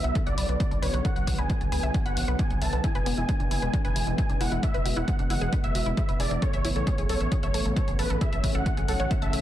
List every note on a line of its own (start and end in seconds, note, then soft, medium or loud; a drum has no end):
0.00 2.80 D3 medium
0.00 2.80 F#3 medium
0.00 8.17 B3 medium
0.00 0.15 E5 medium
0.04 0.11 B1 medium
0.04 0.10 F#5 medium
0.04 closed hi-hat soft
0.15 0.23 A4 loud
0.15 kick loud
0.15 closed hi-hat medium
0.26 0.33 B1 medium
0.26 0.48 D5 medium
0.26 0.32 F#5 loud
0.26 closed hi-hat soft
0.38 0.45 B1 loud
0.38 0.41 B4 medium
0.38 open hi-hat loud
0.49 0.56 B1 medium
0.49 0.54 B4 medium
0.49 closed hi-hat soft
0.60 0.75 D5 medium
0.60 0.68 B5 medium
0.60 kick loud
0.60 closed hi-hat medium
0.71 0.78 B1 medium
0.71 0.77 A4 medium
0.71 closed hi-hat soft
0.82 0.89 B1 loud
0.82 0.86 B4 loud
0.82 0.97 C#5 medium
0.82 open hi-hat medium
0.94 1.00 B1 medium
0.94 0.99 B4 medium
0.94 closed hi-hat soft
1.05 1.13 A4 loud
1.05 1.27 F#5 loud
1.05 kick loud
1.05 closed hi-hat medium
1.16 1.23 B1 medium
1.16 1.22 F#5 loud
1.16 closed hi-hat soft
1.27 1.34 B1 loud
1.27 1.33 C#5 medium
1.27 kick medium
1.27 open hi-hat loud
1.38 1.45 B1 medium
1.38 1.47 B4 loud
1.38 1.61 G#5 medium
1.38 closed hi-hat soft
1.50 1.58 D5 medium
1.50 kick loud
1.50 closed hi-hat medium
1.61 1.68 B1 medium
1.61 1.66 A4 medium
1.61 closed hi-hat soft
1.72 1.79 C#2 loud
1.72 1.75 B4 loud
1.72 1.94 G#5 medium
1.72 open hi-hat medium
1.83 1.90 B1 medium
1.83 1.89 E5 loud
1.83 closed hi-hat soft
1.94 2.00 F#5 medium
1.94 kick loud
1.94 closed hi-hat medium
2.06 2.12 F#1 medium
2.06 2.28 F#5 loud
2.06 2.14 B5 loud
2.06 closed hi-hat soft
2.17 2.24 A1 medium
2.17 2.22 C#5 medium
2.17 open hi-hat loud
2.28 2.35 B1 medium
2.28 2.36 B4 loud
2.39 2.47 D5 medium
2.39 2.54 G#5 medium
2.39 kick loud
2.39 closed hi-hat medium
2.50 2.57 B1 medium
2.50 2.59 F#5 medium
2.50 closed hi-hat soft
2.62 2.68 B1 loud
2.62 2.67 E5 medium
2.62 2.76 A5 medium
2.62 open hi-hat medium
2.73 2.80 B1 medium
2.73 2.78 B4 medium
2.73 closed hi-hat soft
2.84 6.39 E3 medium
2.84 6.39 G#3 medium
2.84 2.92 E4 loud
2.84 3.06 G#5 loud
2.84 kick loud
2.84 closed hi-hat medium
2.95 3.02 E1 medium
2.95 3.01 B4 loud
2.95 closed hi-hat soft
3.06 3.13 E1 medium
3.06 3.15 B3 loud
3.06 open hi-hat medium
3.18 3.24 E1 medium
3.18 3.23 E4 medium
3.18 3.40 G#5 medium
3.18 closed hi-hat soft
3.29 3.34 D4 medium
3.29 kick loud
3.29 closed hi-hat medium
3.40 3.47 E1 medium
3.40 3.45 D4 medium
3.40 closed hi-hat soft
3.51 3.58 F#1 loud
3.51 3.54 E4 loud
3.51 3.73 G#5 medium
3.51 open hi-hat medium
3.62 3.69 E1 medium
3.62 3.68 B4 medium
3.62 closed hi-hat soft
3.73 3.82 D4 loud
3.73 kick loud
3.73 closed hi-hat medium
3.85 3.92 E1 medium
3.85 3.90 B4 loud
3.85 4.07 G#5 loud
3.85 closed hi-hat soft
3.96 4.03 E1 loud
3.96 3.99 E4 medium
3.96 open hi-hat loud
4.07 4.14 E1 medium
4.07 4.13 E4 medium
4.07 closed hi-hat soft
4.18 4.26 E5 medium
4.18 4.33 G#5 medium
4.18 kick loud
4.18 closed hi-hat medium
4.29 4.36 E1 medium
4.29 4.35 D4 medium
4.29 closed hi-hat soft
4.41 4.47 E1 loud
4.41 4.44 E4 loud
4.41 4.55 F#5 medium
4.41 open hi-hat medium
4.52 4.59 E1 medium
4.52 4.57 E4 loud
4.52 closed hi-hat soft
4.63 4.71 D4 medium
4.63 4.85 E5 loud
4.63 kick loud
4.63 closed hi-hat medium
4.74 4.81 E1 medium
4.74 4.80 B4 loud
4.74 closed hi-hat soft
4.85 4.92 E1 medium
4.85 4.91 F#4 medium
4.85 open hi-hat medium
4.97 5.03 E1 medium
4.97 5.05 E4 loud
4.97 5.19 F#5 medium
4.97 closed hi-hat soft
5.08 5.16 G#4 medium
5.08 kick loud
5.08 closed hi-hat medium
5.19 5.26 E1 medium
5.19 5.25 D4 medium
5.19 closed hi-hat soft
5.30 5.37 F#1 medium
5.30 5.33 E4 loud
5.30 5.52 F#5 medium
5.30 open hi-hat medium
5.41 5.48 E1 medium
5.41 5.47 G#4 loud
5.41 closed hi-hat soft
5.52 5.58 B4 medium
5.52 kick loud
5.52 closed hi-hat medium
5.64 5.71 E1 medium
5.64 5.72 E5 loud
5.64 5.86 E5 medium
5.64 closed hi-hat soft
5.75 5.82 E1 medium
5.75 5.80 F#4 medium
5.75 open hi-hat loud
5.86 5.93 E1 medium
5.86 5.94 E4 loud
5.86 closed hi-hat soft
5.97 6.06 G#4 medium
5.97 6.12 E5 medium
5.97 kick loud
5.97 closed hi-hat medium
6.08 6.15 E1 medium
6.08 6.17 B4 medium
6.08 closed hi-hat soft
6.20 6.27 E1 loud
6.20 6.25 G#4 medium
6.20 6.35 D5 medium
6.20 open hi-hat medium
6.31 6.38 E1 medium
6.31 6.37 E4 medium
6.31 closed hi-hat soft
6.42 9.41 C#3 medium
6.42 9.41 A3 medium
6.42 6.50 A4 loud
6.42 6.64 C#5 loud
6.42 kick loud
6.42 closed hi-hat medium
6.53 6.60 A1 medium
6.53 6.59 E5 loud
6.53 closed hi-hat soft
6.64 6.71 A1 loud
6.64 6.73 E4 loud
6.64 open hi-hat medium
6.76 6.83 A1 medium
6.76 6.81 A4 medium
6.76 6.98 C#5 medium
6.76 closed hi-hat soft
6.87 6.93 G#4 medium
6.87 kick loud
6.87 closed hi-hat medium
6.98 7.05 A1 medium
6.98 7.04 G#4 medium
6.98 closed hi-hat soft
7.09 7.16 B1 loud
7.09 7.13 A4 loud
7.09 7.31 C#5 loud
7.09 open hi-hat medium
7.21 7.27 A1 medium
7.21 7.26 E5 medium
7.21 closed hi-hat soft
7.32 7.40 G#4 loud
7.32 kick loud
7.32 closed hi-hat medium
7.43 7.50 A1 medium
7.43 7.65 C#5 loud
7.43 7.49 E5 loud
7.43 closed hi-hat soft
7.54 7.61 A1 loud
7.54 7.57 A4 medium
7.54 open hi-hat loud
7.65 7.72 A1 medium
7.65 7.71 A4 medium
7.65 closed hi-hat soft
7.76 7.91 C#5 medium
7.76 7.85 A5 medium
7.76 kick loud
7.76 closed hi-hat medium
7.88 7.95 A1 medium
7.88 7.93 G#4 medium
7.88 closed hi-hat soft
7.99 8.06 A1 loud
7.99 8.02 A4 loud
7.99 8.14 B4 medium
7.99 open hi-hat medium
8.10 8.17 A1 medium
8.10 8.16 A4 loud
8.10 closed hi-hat soft
8.21 9.41 C#4 medium
8.21 8.30 G#4 loud
8.21 8.43 E5 loud
8.21 kick loud
8.21 closed hi-hat medium
8.33 8.39 A1 medium
8.33 8.38 E5 loud
8.33 closed hi-hat soft
8.44 8.50 A1 medium
8.44 8.49 B4 medium
8.44 kick medium
8.44 open hi-hat loud
8.55 8.62 A1 medium
8.55 8.63 A4 loud
8.55 8.77 F#5 medium
8.66 8.74 C#5 medium
8.66 kick loud
8.66 closed hi-hat medium
8.77 8.84 A1 medium
8.77 8.83 G#4 medium
8.77 closed hi-hat soft
8.88 8.95 B1 loud
8.88 8.92 A4 loud
8.88 9.10 F#5 medium
8.88 open hi-hat medium
9.00 9.06 A1 medium
9.00 9.05 C#5 loud
9.00 closed hi-hat soft
9.11 9.16 E5 medium
9.11 kick loud
9.11 closed hi-hat medium
9.22 9.29 A1 medium
9.22 9.41 E5 loud
9.22 9.30 A5 loud
9.22 closed hi-hat soft
9.33 9.40 A1 medium
9.33 9.39 A4 medium
9.33 open hi-hat medium